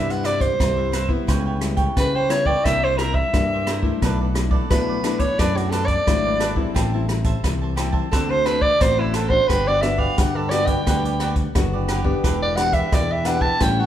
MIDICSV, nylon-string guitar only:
0, 0, Header, 1, 2, 480
1, 0, Start_track
1, 0, Tempo, 684932
1, 901, Time_signature, 4, 2, 24, 8
1, 9713, End_track
2, 0, Start_track
2, 0, Title_t, "Nylon-string guitar"
2, 0, Program_c, 0, 24
2, 0, Note_on_c, 0, 48, 58
2, 0, Note_on_c, 0, 55, 63
2, 0, Note_on_c, 0, 59, 60
2, 0, Note_on_c, 0, 64, 70
2, 382, Note_off_c, 0, 55, 0
2, 382, Note_off_c, 0, 59, 0
2, 385, Note_off_c, 0, 64, 0
2, 396, Note_off_c, 0, 48, 0
2, 422, Note_on_c, 0, 43, 56
2, 423, Note_on_c, 0, 55, 57
2, 427, Note_on_c, 0, 64, 64
2, 647, Note_off_c, 0, 55, 0
2, 649, Note_off_c, 0, 64, 0
2, 761, Note_on_c, 0, 55, 60
2, 766, Note_on_c, 0, 59, 68
2, 769, Note_on_c, 0, 64, 71
2, 878, Note_off_c, 0, 43, 0
2, 896, Note_on_c, 0, 49, 61
2, 1093, Note_off_c, 0, 55, 0
2, 1094, Note_off_c, 0, 59, 0
2, 1096, Note_off_c, 0, 64, 0
2, 1127, Note_on_c, 0, 55, 59
2, 1133, Note_on_c, 0, 59, 50
2, 1135, Note_on_c, 0, 64, 57
2, 1355, Note_off_c, 0, 49, 0
2, 1375, Note_on_c, 0, 49, 57
2, 1576, Note_off_c, 0, 55, 0
2, 1577, Note_off_c, 0, 59, 0
2, 1579, Note_off_c, 0, 64, 0
2, 1606, Note_on_c, 0, 55, 54
2, 1610, Note_on_c, 0, 59, 60
2, 1612, Note_on_c, 0, 64, 63
2, 1755, Note_off_c, 0, 55, 0
2, 1755, Note_off_c, 0, 59, 0
2, 1758, Note_off_c, 0, 64, 0
2, 1834, Note_off_c, 0, 49, 0
2, 1855, Note_on_c, 0, 48, 57
2, 1858, Note_on_c, 0, 58, 57
2, 1858, Note_on_c, 0, 62, 54
2, 1861, Note_on_c, 0, 64, 62
2, 2300, Note_off_c, 0, 58, 0
2, 2301, Note_off_c, 0, 62, 0
2, 2302, Note_off_c, 0, 64, 0
2, 2314, Note_off_c, 0, 48, 0
2, 2336, Note_on_c, 0, 55, 59
2, 2336, Note_on_c, 0, 58, 52
2, 2339, Note_on_c, 0, 62, 54
2, 2339, Note_on_c, 0, 64, 62
2, 2563, Note_off_c, 0, 58, 0
2, 2564, Note_off_c, 0, 62, 0
2, 2565, Note_off_c, 0, 64, 0
2, 2680, Note_on_c, 0, 57, 67
2, 2683, Note_on_c, 0, 62, 60
2, 2687, Note_on_c, 0, 64, 69
2, 2794, Note_off_c, 0, 55, 0
2, 2815, Note_on_c, 0, 47, 59
2, 3012, Note_off_c, 0, 57, 0
2, 3013, Note_off_c, 0, 62, 0
2, 3015, Note_off_c, 0, 64, 0
2, 3048, Note_on_c, 0, 57, 51
2, 3051, Note_on_c, 0, 62, 53
2, 3055, Note_on_c, 0, 64, 58
2, 3256, Note_off_c, 0, 57, 0
2, 3257, Note_off_c, 0, 62, 0
2, 3259, Note_off_c, 0, 64, 0
2, 3273, Note_off_c, 0, 47, 0
2, 3296, Note_on_c, 0, 54, 57
2, 3297, Note_on_c, 0, 57, 59
2, 3299, Note_on_c, 0, 62, 54
2, 3303, Note_on_c, 0, 64, 66
2, 3500, Note_off_c, 0, 57, 0
2, 3501, Note_off_c, 0, 62, 0
2, 3503, Note_off_c, 0, 64, 0
2, 3527, Note_on_c, 0, 57, 55
2, 3531, Note_on_c, 0, 62, 62
2, 3531, Note_on_c, 0, 64, 61
2, 3675, Note_off_c, 0, 57, 0
2, 3676, Note_off_c, 0, 62, 0
2, 3677, Note_off_c, 0, 64, 0
2, 3754, Note_off_c, 0, 54, 0
2, 3775, Note_on_c, 0, 47, 57
2, 3778, Note_on_c, 0, 57, 57
2, 3780, Note_on_c, 0, 64, 63
2, 3781, Note_on_c, 0, 62, 54
2, 4220, Note_off_c, 0, 57, 0
2, 4220, Note_off_c, 0, 62, 0
2, 4222, Note_off_c, 0, 64, 0
2, 4234, Note_off_c, 0, 47, 0
2, 4257, Note_on_c, 0, 54, 59
2, 4262, Note_on_c, 0, 57, 57
2, 4262, Note_on_c, 0, 62, 58
2, 4265, Note_on_c, 0, 64, 64
2, 4485, Note_off_c, 0, 57, 0
2, 4486, Note_off_c, 0, 62, 0
2, 4488, Note_off_c, 0, 64, 0
2, 4601, Note_on_c, 0, 55, 64
2, 4604, Note_on_c, 0, 60, 71
2, 4606, Note_on_c, 0, 64, 71
2, 4715, Note_off_c, 0, 54, 0
2, 4738, Note_on_c, 0, 45, 56
2, 4859, Note_off_c, 0, 55, 0
2, 4860, Note_off_c, 0, 60, 0
2, 4863, Note_off_c, 0, 64, 0
2, 4868, Note_on_c, 0, 55, 61
2, 4869, Note_on_c, 0, 60, 57
2, 4872, Note_on_c, 0, 64, 69
2, 4945, Note_off_c, 0, 55, 0
2, 4946, Note_off_c, 0, 60, 0
2, 4947, Note_off_c, 0, 64, 0
2, 4975, Note_on_c, 0, 55, 60
2, 4979, Note_on_c, 0, 60, 58
2, 4984, Note_on_c, 0, 64, 61
2, 5195, Note_off_c, 0, 45, 0
2, 5226, Note_on_c, 0, 52, 58
2, 5419, Note_off_c, 0, 55, 0
2, 5421, Note_off_c, 0, 60, 0
2, 5422, Note_off_c, 0, 64, 0
2, 5458, Note_on_c, 0, 55, 59
2, 5462, Note_on_c, 0, 60, 60
2, 5465, Note_on_c, 0, 64, 65
2, 5661, Note_off_c, 0, 55, 0
2, 5661, Note_off_c, 0, 60, 0
2, 5664, Note_off_c, 0, 64, 0
2, 5679, Note_off_c, 0, 52, 0
2, 5703, Note_on_c, 0, 50, 61
2, 5705, Note_on_c, 0, 57, 54
2, 5707, Note_on_c, 0, 60, 57
2, 5711, Note_on_c, 0, 66, 61
2, 6011, Note_off_c, 0, 57, 0
2, 6012, Note_off_c, 0, 60, 0
2, 6014, Note_off_c, 0, 66, 0
2, 6157, Note_off_c, 0, 50, 0
2, 6178, Note_on_c, 0, 45, 59
2, 6181, Note_on_c, 0, 57, 54
2, 6182, Note_on_c, 0, 60, 59
2, 6186, Note_on_c, 0, 66, 67
2, 6404, Note_off_c, 0, 57, 0
2, 6406, Note_off_c, 0, 60, 0
2, 6407, Note_off_c, 0, 66, 0
2, 6525, Note_on_c, 0, 59, 73
2, 6529, Note_on_c, 0, 62, 64
2, 6534, Note_on_c, 0, 66, 67
2, 6635, Note_off_c, 0, 45, 0
2, 6664, Note_on_c, 0, 55, 59
2, 6734, Note_off_c, 0, 59, 0
2, 6736, Note_off_c, 0, 62, 0
2, 6737, Note_off_c, 0, 66, 0
2, 6786, Note_on_c, 0, 59, 65
2, 6789, Note_on_c, 0, 62, 67
2, 6792, Note_on_c, 0, 66, 70
2, 6864, Note_off_c, 0, 59, 0
2, 6866, Note_off_c, 0, 62, 0
2, 6867, Note_off_c, 0, 66, 0
2, 6891, Note_on_c, 0, 59, 57
2, 6895, Note_on_c, 0, 62, 53
2, 6896, Note_on_c, 0, 66, 67
2, 7117, Note_off_c, 0, 55, 0
2, 7139, Note_on_c, 0, 50, 63
2, 7337, Note_off_c, 0, 59, 0
2, 7337, Note_off_c, 0, 62, 0
2, 7339, Note_off_c, 0, 66, 0
2, 7370, Note_on_c, 0, 59, 61
2, 7373, Note_on_c, 0, 62, 60
2, 7377, Note_on_c, 0, 66, 70
2, 7576, Note_off_c, 0, 59, 0
2, 7577, Note_off_c, 0, 62, 0
2, 7578, Note_off_c, 0, 66, 0
2, 7595, Note_off_c, 0, 50, 0
2, 7614, Note_on_c, 0, 55, 65
2, 7615, Note_on_c, 0, 59, 58
2, 7617, Note_on_c, 0, 62, 55
2, 8058, Note_off_c, 0, 59, 0
2, 8059, Note_off_c, 0, 62, 0
2, 8072, Note_off_c, 0, 55, 0
2, 8095, Note_on_c, 0, 59, 68
2, 8096, Note_on_c, 0, 50, 58
2, 8099, Note_on_c, 0, 62, 60
2, 8103, Note_on_c, 0, 66, 62
2, 8418, Note_off_c, 0, 59, 0
2, 8420, Note_off_c, 0, 62, 0
2, 8421, Note_off_c, 0, 66, 0
2, 8440, Note_on_c, 0, 59, 72
2, 8442, Note_on_c, 0, 62, 71
2, 8447, Note_on_c, 0, 67, 74
2, 8553, Note_off_c, 0, 50, 0
2, 8576, Note_on_c, 0, 52, 57
2, 8651, Note_off_c, 0, 59, 0
2, 8652, Note_off_c, 0, 62, 0
2, 8653, Note_off_c, 0, 67, 0
2, 8808, Note_on_c, 0, 59, 53
2, 8811, Note_on_c, 0, 62, 60
2, 8815, Note_on_c, 0, 67, 65
2, 9033, Note_off_c, 0, 52, 0
2, 9056, Note_on_c, 0, 47, 63
2, 9122, Note_off_c, 0, 59, 0
2, 9124, Note_off_c, 0, 62, 0
2, 9125, Note_off_c, 0, 67, 0
2, 9288, Note_on_c, 0, 59, 62
2, 9291, Note_on_c, 0, 62, 60
2, 9293, Note_on_c, 0, 67, 70
2, 9434, Note_off_c, 0, 59, 0
2, 9435, Note_off_c, 0, 62, 0
2, 9437, Note_off_c, 0, 67, 0
2, 9513, Note_off_c, 0, 47, 0
2, 9537, Note_on_c, 0, 45, 62
2, 9540, Note_on_c, 0, 55, 64
2, 9540, Note_on_c, 0, 61, 64
2, 9546, Note_on_c, 0, 64, 67
2, 9713, Note_off_c, 0, 45, 0
2, 9713, Note_off_c, 0, 55, 0
2, 9713, Note_off_c, 0, 61, 0
2, 9713, Note_off_c, 0, 64, 0
2, 9713, End_track
0, 0, End_of_file